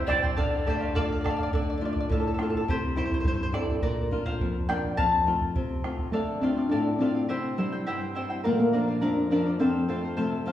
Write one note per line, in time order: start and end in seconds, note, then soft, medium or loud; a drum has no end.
0.00 0.34 C3 medium
0.06 0.36 G3 medium
0.06 0.23 E4 medium
0.06 0.22 C5 medium
0.06 1.18 D5 medium
0.06 1.19 D5 medium
0.06 0.22 E5 medium
0.06 0.21 G5 medium
0.06 bombo rim medium
0.06 bombo low medium
0.23 0.36 E4 soft
0.23 0.37 C5 medium
0.23 0.37 G5 medium
0.23 bombo low medium
0.37 1.49 D3 medium
0.37 0.65 A4 medium
0.37 0.66 D5 medium
0.37 0.66 F5 medium
0.37 bombo low medium
0.66 0.94 A3 medium
0.66 0.94 G4 medium
0.66 0.80 A4 medium
0.66 0.96 C5 medium
0.66 0.81 D5 medium
0.66 0.69 F5 medium
0.66 bombo low medium
0.81 0.95 D5 medium
0.81 0.95 F5 medium
0.95 1.23 F4 medium
0.95 1.02 A4 medium
0.95 0.98 D5 medium
0.95 1.04 D5 medium
0.95 1.24 F5 medium
0.95 bombo low medium
1.05 1.11 D5 medium
1.12 1.19 D5 medium
1.21 1.52 A3 soft
1.21 1.38 A4 medium
1.21 1.24 D5 medium
1.25 1.29 D5 medium
1.25 1.38 F5 medium
1.25 bombo rim medium
1.25 bombo low medium
1.30 1.35 D5 medium
1.36 1.39 D5 medium
1.36 1.42 D5 soft
1.36 1.53 F5 medium
1.36 bombo low medium
1.43 1.49 D5 medium
1.53 2.08 D3 medium
1.53 1.60 A4 medium
1.53 1.61 D5 medium
1.53 bombo low medium
1.62 1.69 D5 medium
1.70 1.76 D5 medium
1.78 2.27 A3 soft
1.78 2.27 D4 soft
1.78 1.84 D5 medium
1.82 2.27 F4 soft
1.82 1.92 D5 medium
1.93 1.99 D5 medium
1.93 bombo low medium
2.00 2.07 D5 medium
2.09 2.65 A2 medium
2.09 2.18 F4 medium
2.09 2.19 A4 medium
2.09 bombo low medium
2.20 2.26 A4 soft
2.27 2.33 A4 medium
2.34 2.41 A4 soft
2.38 2.62 A3 soft
2.38 2.62 D4 soft
2.38 2.62 F4 soft
2.38 2.49 A4 medium
2.38 bombo rim medium
2.50 2.56 A4 medium
2.54 2.64 A4 medium
2.54 bombo low soft
2.68 3.24 C3 medium
2.68 2.95 G4 medium
2.68 2.96 C5 medium
2.68 bombo low medium
2.96 3.42 G3 soft
2.96 3.42 C4 soft
2.96 3.43 E4 soft
2.96 3.04 G4 medium
2.96 3.04 C5 medium
2.96 bombo low soft
3.05 3.12 C5 medium
3.11 3.19 C5 medium
3.11 bombo low medium
3.20 3.26 C5 medium
3.24 3.81 G2 medium
3.24 3.33 C5 medium
3.24 bombo low medium
3.43 3.50 C5 medium
3.52 3.76 G3 soft
3.52 3.77 C4 soft
3.52 3.77 E4 medium
3.52 3.81 A4 medium
3.52 3.81 D5 medium
3.52 bombo rim medium
3.69 bombo low soft
3.82 4.39 A#2 medium
3.82 4.23 A#4 medium
3.82 4.23 D5 medium
3.82 bombo low medium
4.11 4.57 A#3 soft
4.11 4.58 D4 soft
4.11 4.58 F4 soft
4.11 bombo low soft
4.25 4.66 C5 medium
4.25 4.70 F5 medium
4.25 bombo low soft
4.40 4.97 F2 medium
4.40 bombo low medium
4.69 4.92 A#3 soft
4.69 4.93 D4 soft
4.69 4.93 F4 soft
4.69 4.96 D5 medium
4.69 4.97 G5 medium
4.69 bombo rim soft
4.84 bombo low soft
4.97 5.54 F2 medium
4.97 5.80 F5 medium
4.97 5.80 A5 medium
4.97 bombo low medium
5.27 5.73 A3 soft
5.27 5.73 C4 soft
5.27 5.73 F4 soft
5.27 bombo low soft
5.41 bombo low soft
5.55 6.12 C3 medium
5.55 bombo low medium
5.84 6.07 A3 soft
5.84 6.08 C4 soft
5.84 6.08 F4 soft
5.84 bombo rim soft
5.99 bombo low soft
6.12 6.69 D3 medium
6.12 6.39 A3 medium
6.12 6.40 A4 medium
6.12 6.41 D5 medium
6.12 6.42 F5 medium
6.41 6.89 A3 soft
6.41 6.54 C4 medium
6.41 6.89 D4 soft
6.41 6.89 F4 soft
6.41 6.56 A4 soft
6.41 6.57 D5 medium
6.41 6.56 F5 medium
6.57 6.70 D5 soft
6.57 6.71 F5 soft
6.70 7.28 A2 medium
6.70 6.97 D4 medium
6.70 6.99 A4 medium
6.70 7.00 D5 medium
6.70 7.00 F5 medium
6.99 7.23 A3 soft
6.99 7.59 C4 medium
6.99 7.23 D4 soft
6.99 7.24 F4 soft
6.99 7.14 A4 medium
6.99 7.15 D5 medium
6.99 7.14 F5 medium
7.15 7.29 D5 soft
7.15 7.29 F5 soft
7.29 7.85 C3 medium
7.29 7.57 E4 medium
7.29 7.57 G4 medium
7.29 7.57 C5 medium
7.29 7.57 E5 medium
7.29 7.58 G5 medium
7.57 8.04 G3 soft
7.57 8.12 G3 medium
7.57 8.04 C4 soft
7.57 8.04 E4 soft
7.57 7.72 E4 medium
7.57 7.72 C5 medium
7.57 7.72 E5 soft
7.57 7.71 G5 medium
7.72 7.86 E4 soft
7.72 7.86 C5 soft
7.72 7.87 G5 soft
7.86 8.43 G2 medium
7.86 8.15 E4 medium
7.86 8.15 G4 medium
7.86 8.15 C5 medium
7.86 8.14 E5 medium
7.86 8.15 G5 medium
8.15 8.39 G3 soft
8.15 8.39 C4 soft
8.15 8.30 E4 medium
8.15 8.39 E4 soft
8.15 8.29 C5 medium
8.15 8.29 E5 medium
8.15 8.28 G5 medium
8.30 8.45 E4 soft
8.30 8.43 C5 soft
8.30 8.44 G5 soft
8.44 9.01 A#2 medium
8.44 8.52 A#3 medium
8.44 8.71 A#4 medium
8.44 8.72 D5 medium
8.44 8.73 F5 medium
8.52 8.59 A3 medium
8.60 8.99 A#3 medium
8.73 9.19 F3 soft
8.73 9.20 A#3 soft
8.73 9.20 D4 soft
8.73 8.87 A#4 medium
8.73 8.87 D5 medium
8.73 8.86 F5 medium
8.87 9.00 D5 soft
8.87 9.01 F5 soft
9.01 9.58 F2 medium
9.01 9.29 D4 medium
9.01 9.29 A#4 medium
9.01 9.30 D5 medium
9.01 9.31 F5 medium
9.31 9.54 F3 soft
9.31 9.55 A#3 soft
9.31 9.54 D4 soft
9.31 9.58 D4 medium
9.31 9.45 A#4 medium
9.31 9.44 D5 medium
9.31 9.43 F5 medium
9.44 9.59 D5 soft
9.44 9.59 F5 soft
9.59 10.16 F2 medium
9.59 10.19 C4 medium
9.59 9.87 A4 medium
9.59 9.88 C5 medium
9.59 9.89 F5 medium
9.88 10.34 F3 soft
9.88 10.35 A3 soft
9.88 10.35 C4 soft
9.88 10.03 A4 soft
9.88 10.02 C5 soft
9.88 10.01 F5 medium
10.03 10.16 C5 soft
10.03 10.16 F5 soft
10.17 10.52 C3 medium
10.17 10.52 A3 medium
10.17 10.45 A4 medium
10.17 10.46 C5 medium
10.17 10.46 F5 medium
10.46 10.52 F3 soft
10.46 10.52 A3 soft
10.46 10.52 C4 soft
10.46 10.52 A4 soft
10.46 10.52 C5 medium
10.46 10.52 F5 medium